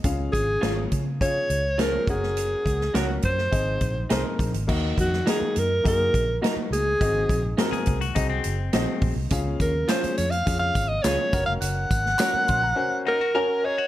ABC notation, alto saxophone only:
X:1
M:4/4
L:1/16
Q:1/4=104
K:Ebdor
V:1 name="Alto saxophone"
z2 A4 z2 d4 B2 A2- | A4 G z c6 z4 | z2 G2 A2 B2 B4 z2 A2- | A4 z12 |
z2 B2 c2 d f2 f2 e d3 f | g8- g2 B4 d2 |]